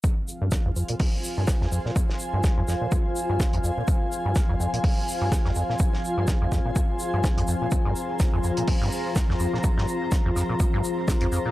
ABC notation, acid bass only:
X:1
M:4/4
L:1/16
Q:"Swing 16ths" 1/4=125
K:Fm
V:1 name="Acid bass" clef=bass
F,, z2 G,, E,, F,, F,, B,, F,, z2 G,, E,, F,, F,, B,, | F,, z2 G,, E,, F,, F,, B,, F,, z2 G,, E,, F,, F,, B,, | F,, z2 G,, E,, F,, F,, B,, F,, z2 G,, E,, F,, F,, B,, | F,, z2 G,, E,, F,, F,, B,, F,, z2 G,, E,, F,, F,, B,, |
F,, G,, z2 E,, F,, F,, B,, F,, G,, z2 E,, F,, F,, B,, | F,, G,, z2 E,, F,, F,, B,, F,, G,, z2 E,, F,, F,, B,, |]